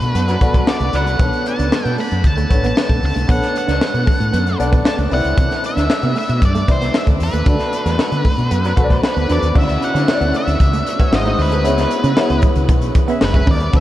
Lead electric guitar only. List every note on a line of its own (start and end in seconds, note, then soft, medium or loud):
0.00 0.74 B4 medium
0.69 0.95 D5 medium
0.95 1.47 F#5 medium
1.48 1.95 A5 medium
2.00 2.26 B5 medium
2.27 2.65 A5 loud
2.67 3.04 A5 medium
3.06 3.31 A5 medium
3.31 3.57 F#5 medium
3.58 4.57 F#5 medium
4.88 4.94 A5 loud
5.14 5.61 F#5 medium
5.66 6.17 E5 medium
6.18 6.44 E5 medium
6.45 6.71 D5 medium
6.71 6.97 C5 medium
6.97 7.04 E5 medium
7.23 9.01 B4 medium
9.05 9.31 B4 medium
9.32 9.55 D5 medium
9.58 9.84 E5 medium
9.84 10.37 F#5 loud
10.36 11.15 E5 medium
11.15 11.41 D#5 medium
11.42 12.41 B4 medium
13.25 13.50 B4 medium
13.51 13.76 D5 medium
13.77 13.80 E5 medium